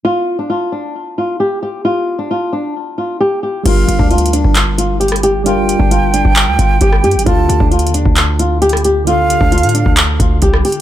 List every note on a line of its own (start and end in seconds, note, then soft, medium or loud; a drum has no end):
0.05 0.36 F4 loud
0.39 0.49 D4 medium
0.50 0.71 F4 medium
0.72 0.93 D4 medium
1.18 1.39 F4 medium
1.40 1.61 G4 medium
1.63 1.83 G4 medium
1.85 2.17 F4 loud
2.19 2.29 D4 medium
2.31 2.51 F4 medium
2.53 2.74 D4 medium
2.98 3.19 F4 medium
3.21 3.41 G4 medium
3.43 3.64 G4 medium
3.63 3.87 G1 loud
3.63 5.41 G3 medium
3.63 5.42 D4 medium
3.63 5.43 F4 medium
3.63 3.98 F4 loud
3.63 4.08 F5 loud
3.63 kick loud
3.63 closed hi-hat medium
3.63 crash loud
3.68 5.43 A#4 medium
3.88 3.99 G1 loud
3.88 closed hi-hat medium
3.99 4.43 D2 loud
3.99 4.09 D4 medium
3.99 kick medium
4.11 4.32 F4 medium
4.11 closed hi-hat soft
4.18 closed hi-hat medium
4.26 closed hi-hat medium
4.33 4.54 D4 medium
4.33 closed hi-hat medium
4.44 5.76 G1 loud
4.44 kick medium
4.55 clap loud
4.55 closed hi-hat medium
4.78 4.99 F4 medium
4.78 closed hi-hat medium
5.00 5.21 G4 medium
5.00 closed hi-hat medium
5.08 cross-stick medium
5.08 closed hi-hat medium
5.16 closed hi-hat medium
5.23 5.44 G4 medium
5.23 closed hi-hat medium
5.44 7.22 G3 medium
5.44 7.22 D4 medium
5.44 5.78 F4 loud
5.44 7.23 F4 medium
5.44 7.22 G5 loud
5.44 closed hi-hat medium
5.48 7.24 A#4 medium
5.69 closed hi-hat medium
5.79 6.23 G1 loud
5.79 5.90 D4 medium
5.79 kick medium
5.91 6.12 F4 medium
5.91 closed hi-hat medium
6.14 6.35 D4 medium
6.14 closed hi-hat medium
6.25 6.49 G1 loud
6.25 kick loud
6.36 clap loud
6.36 closed hi-hat medium
6.48 6.58 D2 loud
6.59 6.80 G1 loud
6.59 6.79 F4 medium
6.59 kick loud
6.59 closed hi-hat medium
6.81 7.05 G1 loud
6.81 7.02 G4 medium
6.81 kick loud
6.81 closed hi-hat medium
6.93 cross-stick medium
7.04 7.17 G2 loud
7.04 7.25 G4 medium
7.04 closed hi-hat soft
7.11 7.26 G1 loud
7.11 closed hi-hat medium
7.19 closed hi-hat medium
7.24 7.48 D2 loud
7.24 9.02 D3 medium
7.24 9.03 D4 medium
7.24 7.58 F4 loud
7.24 9.04 F4 medium
7.24 7.69 A5 loud
7.24 kick loud
7.24 closed hi-hat medium
7.28 9.04 A4 medium
7.49 7.60 D2 loud
7.49 closed hi-hat medium
7.60 7.84 D2 loud
7.60 7.71 D4 medium
7.60 kick medium
7.71 7.92 F4 medium
7.71 closed hi-hat soft
7.79 8.04 D#2 loud
7.79 closed hi-hat medium
7.87 closed hi-hat medium
7.94 8.15 D4 medium
7.94 closed hi-hat medium
8.05 9.37 D2 loud
8.05 kick medium
8.16 clap loud
8.16 closed hi-hat medium
8.39 8.60 F4 medium
8.39 closed hi-hat medium
8.62 8.83 G4 loud
8.62 closed hi-hat medium
8.69 cross-stick medium
8.69 closed hi-hat medium
8.77 closed hi-hat medium
8.84 9.05 G4 medium
8.84 closed hi-hat medium
9.05 10.81 D3 medium
9.05 10.81 D4 medium
9.05 9.39 F4 loud
9.05 10.81 F4 medium
9.05 9.94 F5 loud
9.05 closed hi-hat medium
9.09 10.81 A4 medium
9.30 closed hi-hat medium
9.41 9.65 D2 loud
9.41 9.51 D4 medium
9.41 kick medium
9.52 9.73 F4 medium
9.52 closed hi-hat medium
9.58 closed hi-hat medium
9.63 9.85 A2 loud
9.63 closed hi-hat medium
9.69 closed hi-hat medium
9.75 9.95 D4 medium
9.75 closed hi-hat medium
9.86 10.18 D2 loud
9.86 kick loud
9.97 clap loud
9.97 closed hi-hat medium
10.20 10.41 D2 loud
10.20 10.41 F4 medium
10.20 kick loud
10.20 closed hi-hat medium
10.42 10.64 C2 loud
10.42 10.63 G4 medium
10.42 kick loud
10.42 closed hi-hat medium
10.54 cross-stick medium
10.65 10.81 G4 medium
10.65 closed hi-hat medium
10.65 open hi-hat medium
10.72 closed hi-hat medium